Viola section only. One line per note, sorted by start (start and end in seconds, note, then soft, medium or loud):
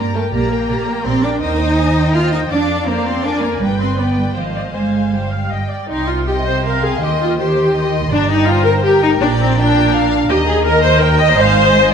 0.00 0.13 G4 soft
0.00 0.13 D5 soft
0.15 0.33 A#4 soft
0.32 0.50 G4 soft
0.32 0.49 D5 soft
0.51 0.69 A#4 soft
0.69 0.87 G4 soft
0.69 0.87 D5 soft
0.87 1.05 A#4 soft
1.04 1.22 G4 soft
1.04 1.22 D5 soft
1.22 1.39 A#4 soft
1.40 1.58 A#4 medium
1.40 1.58 C5 medium
1.59 2.13 C5 medium
1.77 2.12 D#5 soft
2.14 2.50 C5 medium
2.14 2.50 D#5 soft
2.50 2.86 D5 medium
2.87 3.24 C5 soft
2.87 3.60 D5 medium
3.25 3.62 A#4 soft
3.61 3.97 B4 soft
3.99 4.35 B4 soft
3.99 4.36 D5 soft
4.36 4.71 C5 soft
4.54 4.62 D5 soft
4.72 5.08 C5 soft
5.12 5.30 C5 soft
5.31 5.51 F5 soft
5.51 5.71 D#5 soft
5.69 5.89 D5 soft
5.89 6.07 D#4 medium
6.07 6.27 F4 medium
6.27 6.34 G4 medium
6.45 6.64 C5 medium
6.63 6.82 A#4 medium
6.84 7.02 G#4 medium
7.02 7.10 G4 medium
7.21 7.38 F4 medium
7.39 7.93 G4 medium
8.13 8.30 D4 medium
8.31 8.49 D#4 medium
8.48 8.67 F4 medium
8.66 8.73 A#4 medium
8.85 9.03 G4 medium
9.03 9.11 D#4 medium
9.23 9.30 D4 medium
9.41 9.58 C4 medium
9.60 10.12 D4 medium
10.30 10.37 G4 loud
10.47 10.65 G#4 medium
10.65 10.83 A#4 loud
10.83 11.02 C5 loud
11.01 11.20 A#4 medium
11.20 11.38 D#5 loud
11.37 11.92 C5 loud